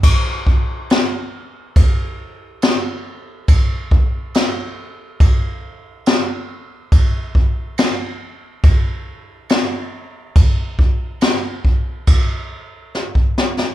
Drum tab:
CC |x---x---x---x---|x---x---x---x---|x---x---x---x---|x---x---x-------|
SD |----o-------o---|----o-------o---|----o-------o---|----o-------o-oo|
BD |o-o-----o-------|o-o-----o-------|o-o-----o-------|o-o---o-o----o--|